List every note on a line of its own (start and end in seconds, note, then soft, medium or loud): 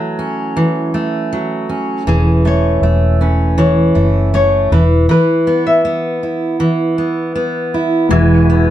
0.00 0.56 E3 medium
0.00 1.31 F#3 medium
0.00 0.94 A3 medium
0.00 0.35 A4 medium
0.19 1.69 C#4 medium
0.57 2.07 E3 medium
0.94 2.45 A3 medium
1.33 2.07 F#3 medium
1.69 3.20 C#4 soft
2.07 2.79 E1 medium
2.07 3.57 E3 medium
2.07 2.47 G#4 medium
2.45 2.82 A3 medium
2.45 3.18 C#5 medium
2.82 3.92 E1 loud
2.82 3.94 A3 medium
3.21 4.79 C#4 medium
3.21 3.58 B4 medium
3.58 4.72 E3 medium
3.58 4.33 C#5 medium
3.95 4.68 F#1 medium
3.95 4.33 A3 soft
4.34 4.79 A3 medium
4.34 4.72 C#5 medium
4.72 5.06 E1 medium
4.72 5.09 E3 medium
4.72 5.10 B4 medium
5.09 6.59 E3 medium
5.09 5.66 B4 medium
5.47 5.84 B3 medium
5.67 6.38 E5 medium
5.85 6.98 B3 medium
6.23 7.74 E4 soft
6.60 8.11 E3 medium
6.98 7.35 B3 soft
7.35 8.49 B3 medium
7.74 8.70 E4 soft
8.09 8.70 E1 medium
8.09 8.70 E3 medium
8.09 8.70 G#3 medium
8.09 8.70 E4 medium
8.09 8.70 F#4 medium
8.09 8.70 B4 medium
8.09 8.70 E5 medium
8.09 8.70 G#5 medium
8.50 8.70 B3 medium